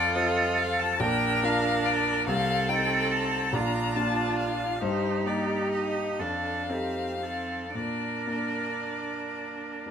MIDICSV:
0, 0, Header, 1, 5, 480
1, 0, Start_track
1, 0, Key_signature, -2, "major"
1, 0, Tempo, 846262
1, 1291, Time_signature, 6, 3, 24, 8
1, 2252, Tempo, 872093
1, 3212, Tempo, 991736
1, 3692, Tempo, 1056338
1, 5147, End_track
2, 0, Start_track
2, 0, Title_t, "Violin"
2, 0, Program_c, 0, 40
2, 0, Note_on_c, 0, 74, 97
2, 85, Note_on_c, 0, 75, 79
2, 93, Note_off_c, 0, 74, 0
2, 326, Note_on_c, 0, 77, 88
2, 334, Note_off_c, 0, 75, 0
2, 452, Note_on_c, 0, 81, 86
2, 461, Note_off_c, 0, 77, 0
2, 568, Note_on_c, 0, 79, 98
2, 576, Note_off_c, 0, 81, 0
2, 820, Note_on_c, 0, 77, 93
2, 829, Note_off_c, 0, 79, 0
2, 1051, Note_on_c, 0, 74, 89
2, 1059, Note_off_c, 0, 77, 0
2, 1283, Note_off_c, 0, 74, 0
2, 1286, Note_on_c, 0, 77, 97
2, 1525, Note_on_c, 0, 79, 80
2, 1534, Note_off_c, 0, 77, 0
2, 1769, Note_on_c, 0, 81, 83
2, 1777, Note_off_c, 0, 79, 0
2, 2003, Note_on_c, 0, 82, 89
2, 2012, Note_off_c, 0, 81, 0
2, 2246, Note_on_c, 0, 81, 82
2, 2254, Note_off_c, 0, 82, 0
2, 2477, Note_off_c, 0, 81, 0
2, 2481, Note_on_c, 0, 77, 76
2, 2720, Note_on_c, 0, 72, 74
2, 2728, Note_off_c, 0, 77, 0
2, 2965, Note_on_c, 0, 74, 59
2, 2973, Note_off_c, 0, 72, 0
2, 3209, Note_off_c, 0, 74, 0
2, 3212, Note_on_c, 0, 75, 58
2, 3451, Note_on_c, 0, 77, 67
2, 3458, Note_off_c, 0, 75, 0
2, 4163, Note_off_c, 0, 77, 0
2, 4166, Note_on_c, 0, 74, 55
2, 5147, Note_off_c, 0, 74, 0
2, 5147, End_track
3, 0, Start_track
3, 0, Title_t, "Cello"
3, 0, Program_c, 1, 42
3, 0, Note_on_c, 1, 69, 79
3, 558, Note_off_c, 1, 69, 0
3, 571, Note_on_c, 1, 70, 80
3, 1277, Note_off_c, 1, 70, 0
3, 1298, Note_on_c, 1, 69, 86
3, 2018, Note_on_c, 1, 65, 64
3, 2027, Note_off_c, 1, 69, 0
3, 2723, Note_off_c, 1, 65, 0
3, 2726, Note_on_c, 1, 67, 70
3, 3445, Note_on_c, 1, 69, 52
3, 3452, Note_off_c, 1, 67, 0
3, 3697, Note_on_c, 1, 67, 43
3, 3704, Note_off_c, 1, 69, 0
3, 3928, Note_on_c, 1, 69, 43
3, 3935, Note_off_c, 1, 67, 0
3, 4167, Note_on_c, 1, 70, 47
3, 4174, Note_off_c, 1, 69, 0
3, 5147, Note_off_c, 1, 70, 0
3, 5147, End_track
4, 0, Start_track
4, 0, Title_t, "Grand piano"
4, 0, Program_c, 2, 0
4, 0, Control_c, 2, 64, 127
4, 0, Note_on_c, 2, 41, 70
4, 81, Note_off_c, 2, 41, 0
4, 88, Note_on_c, 2, 60, 54
4, 90, Note_on_c, 2, 65, 57
4, 94, Note_on_c, 2, 69, 54
4, 548, Note_off_c, 2, 60, 0
4, 549, Note_off_c, 2, 65, 0
4, 551, Note_off_c, 2, 69, 0
4, 567, Note_on_c, 2, 34, 63
4, 582, Control_c, 2, 64, 0
4, 677, Control_c, 2, 64, 127
4, 806, Note_off_c, 2, 34, 0
4, 812, Note_on_c, 2, 62, 54
4, 815, Note_on_c, 2, 65, 52
4, 817, Note_on_c, 2, 70, 60
4, 1267, Note_off_c, 2, 62, 0
4, 1268, Note_off_c, 2, 65, 0
4, 1269, Note_off_c, 2, 70, 0
4, 1288, Note_on_c, 2, 36, 67
4, 1301, Control_c, 2, 64, 0
4, 1404, Control_c, 2, 64, 127
4, 1520, Note_off_c, 2, 36, 0
4, 1526, Note_on_c, 2, 63, 50
4, 1526, Note_on_c, 2, 69, 51
4, 1985, Note_off_c, 2, 63, 0
4, 1985, Note_off_c, 2, 69, 0
4, 2002, Note_on_c, 2, 34, 59
4, 2019, Control_c, 2, 64, 0
4, 2117, Control_c, 2, 64, 127
4, 2240, Note_off_c, 2, 34, 0
4, 2247, Note_on_c, 2, 62, 45
4, 2248, Note_on_c, 2, 58, 46
4, 2253, Note_on_c, 2, 65, 52
4, 2698, Note_off_c, 2, 58, 0
4, 2698, Note_off_c, 2, 62, 0
4, 2701, Note_off_c, 2, 65, 0
4, 2718, Note_on_c, 2, 43, 59
4, 2732, Control_c, 2, 64, 0
4, 2825, Control_c, 2, 64, 127
4, 2951, Note_off_c, 2, 43, 0
4, 2955, Note_on_c, 2, 58, 41
4, 2959, Note_on_c, 2, 63, 42
4, 2963, Note_on_c, 2, 67, 47
4, 3425, Note_off_c, 2, 58, 0
4, 3427, Note_off_c, 2, 63, 0
4, 3429, Note_off_c, 2, 67, 0
4, 3442, Note_on_c, 2, 41, 44
4, 3457, Control_c, 2, 64, 0
4, 3542, Control_c, 2, 64, 127
4, 3681, Note_off_c, 2, 41, 0
4, 3688, Note_on_c, 2, 60, 34
4, 3691, Note_on_c, 2, 63, 35
4, 3692, Note_on_c, 2, 69, 36
4, 4148, Note_off_c, 2, 60, 0
4, 4149, Note_off_c, 2, 63, 0
4, 4150, Note_off_c, 2, 69, 0
4, 4163, Note_on_c, 2, 46, 39
4, 4177, Control_c, 2, 64, 0
4, 4267, Control_c, 2, 64, 127
4, 4400, Note_off_c, 2, 46, 0
4, 4402, Note_on_c, 2, 62, 30
4, 4403, Note_on_c, 2, 58, 30
4, 4408, Note_on_c, 2, 70, 32
4, 5108, Note_off_c, 2, 58, 0
4, 5108, Note_off_c, 2, 62, 0
4, 5111, Note_off_c, 2, 70, 0
4, 5127, Note_on_c, 2, 58, 30
4, 5127, Note_on_c, 2, 62, 27
4, 5132, Note_on_c, 2, 70, 31
4, 5147, Note_off_c, 2, 58, 0
4, 5147, Note_off_c, 2, 62, 0
4, 5147, Note_off_c, 2, 70, 0
4, 5147, End_track
5, 0, Start_track
5, 0, Title_t, "Viola"
5, 0, Program_c, 3, 41
5, 0, Note_on_c, 3, 65, 67
5, 547, Note_off_c, 3, 65, 0
5, 572, Note_on_c, 3, 62, 71
5, 1290, Note_on_c, 3, 60, 65
5, 1298, Note_off_c, 3, 62, 0
5, 2010, Note_on_c, 3, 62, 58
5, 2018, Note_off_c, 3, 60, 0
5, 2719, Note_off_c, 3, 62, 0
5, 2723, Note_on_c, 3, 63, 54
5, 3445, Note_on_c, 3, 62, 46
5, 3452, Note_off_c, 3, 63, 0
5, 3686, Note_on_c, 3, 60, 43
5, 3693, Note_off_c, 3, 62, 0
5, 3919, Note_off_c, 3, 60, 0
5, 3922, Note_on_c, 3, 60, 41
5, 4161, Note_off_c, 3, 60, 0
5, 4167, Note_on_c, 3, 62, 40
5, 5147, Note_off_c, 3, 62, 0
5, 5147, End_track
0, 0, End_of_file